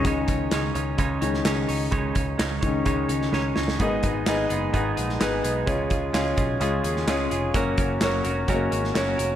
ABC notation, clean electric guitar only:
X:1
M:4/4
L:1/8
Q:1/4=128
K:C#mix
V:1 name="Clean electric guitar"
[C,G,CDc] [CDc] [G,CDc] [CDc] [C,G,CDc] [CDc] [G,CDc] [CDc] | [C,G,CDc] [CDc] [G,CDc] [CDc] [C,G,CDc] [CDc] [G,CDc] [CDc] | [G,,D,G,B,DG] [G,B,DG] [G,B,DG] [G,B,DG] [G,,D,G,B,DG] [G,B,DG] [G,B,DG] [G,B,DG] | [C,G,CEG] [CEG] [G,CEG] [CEG] [C,G,CEG] [CEG] [G,CEG] [CEG] |
[F,CFA] [CFA] [F,CFA] [CFA] [F,CFA] [CFA] [F,CFA] [CFA] |]